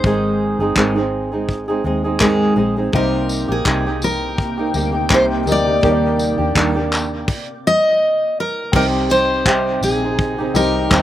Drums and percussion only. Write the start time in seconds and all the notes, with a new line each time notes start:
0.04 kick
0.76 kick, clap
1.49 kick
2.20 kick, clap
2.93 kick
3.29 tambourine
3.65 kick, clap
4.02 tambourine
4.38 kick
4.74 tambourine
5.10 kick, clap
5.47 tambourine
5.83 kick
6.19 tambourine
6.55 kick, clap
6.92 clap, tambourine
7.28 kick, crash
8.73 kick, crash
9.10 tambourine
9.46 kick, clap
9.83 tambourine
10.19 kick
10.55 tambourine
10.91 kick, clap